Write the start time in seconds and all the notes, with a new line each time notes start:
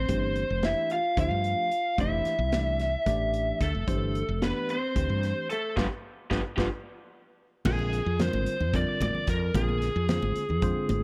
Already playing: C4 C5
0.08 G1 E3 A3 D4 G4 C5, kick, closed hi-hat
0.36 closed hi-hat
0.50 F1
0.62 E3 A3 D4 E4 G4 C5 E5, snare, closed hi-hat
0.90 F4 F5, closed hi-hat
1.16 D2 F3 A3 D4 G4 C5 F5, kick, closed hi-hat
1.21 F4
1.31 G2
1.44 closed hi-hat
1.72 closed hi-hat
1.98 F1 E3 A3 D4 E4 G4 C5 E5, kick, closed hi-hat
2.25 muted fretless electric bass stroke, snare, closed hi-hat
2.39 C2
2.52 E3 A3 D4 G4 D5, snare, closed hi-hat
2.79 snare, closed hi-hat
3.06 A1 E3 A3 D4 G4 D5, kick, snare, closed hi-hat
3.34 closed hi-hat
3.61 D2 A3 A4, kick, snare, closed hi-hat
3.75 F1
3.87 G1 E3 A3 D4 G4 C5, kick, closed hi-hat
4.15 closed hi-hat
4.29 F1
4.41 E3 A3 B3 D4 G4 B4 D5, snare, closed hi-hat
4.69 C4 C5, closed hi-hat
4.95 D2 E3 A3 D4 G4 C5, kick, closed hi-hat
5.09 G2
5.23 snare, closed hi-hat
5.50 A3 A4, closed hi-hat
5.76 G1 F3 G3 B3 D4 F4 G4 B4, kick, snare
6.30 G1 F3 G3 B3 D4 F4 G4 B4, kick, snare
6.57 G1 F3 G3 B3 D4 F4 G4 B4, kick, snare
7.65 A#1 D3 G#3 C4 F4 G#4 A#4, kick, crash, muted conga, low conga
7.79 high conga
7.93 closed hi-hat
8.06 F2
8.19 D3 G3 C4 F4 A#4 C5, snare, closed hi-hat, low conga
8.33 G#1, muted conga, high conga
8.46 closed hi-hat
8.60 F2, low conga
8.74 D3 G3 C4 F4 A#4 D5, kick, closed hi-hat
9.01 G#1 D5, kick, closed hi-hat, muted conga, high conga, low conga
9.14 muted fretless electric bass stroke, low conga
9.27 F2 A#4, kick, snare, closed hi-hat
9.54 A#1 D3 G#3 C4 F4 G#4 A#4, kick, closed hi-hat, muted conga, low conga
9.69 high conga
9.82 snare, closed hi-hat
9.96 F2
10.09 D3 G#3 C4 F4 C5, snare, closed hi-hat, low conga
10.22 G#1, muted conga, high conga
10.36 muted fretless electric bass stroke, closed hi-hat
10.49 F2, low conga
10.62 D3 G#3 C4 F4 C5, kick, closed hi-hat
10.89 G#1, closed hi-hat, muted conga, high conga, low conga